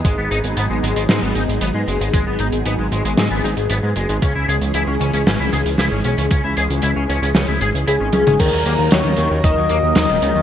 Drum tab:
CC |----------------|----------------|----------------|----------------|
HH |x-xxx-xxx-xxx-xx|x-xxx-xxx-xxx-xx|x-xxx-xxx-xxx-xx|x-xxx-xxx-xxx-xx|
SD |--------o-------|--------o-------|--------o---o---|--------o-------|
T1 |----------------|----------------|----------------|--------------o-|
T2 |----------------|----------------|----------------|---------------o|
BD |o---------------|o---------------|o---------------|o---------------|

CC |x---------------|
HH |x-x-x-x-x-x-x-x-|
SD |----o-------o---|
T1 |----------------|
T2 |----------------|
BD |o-------o-------|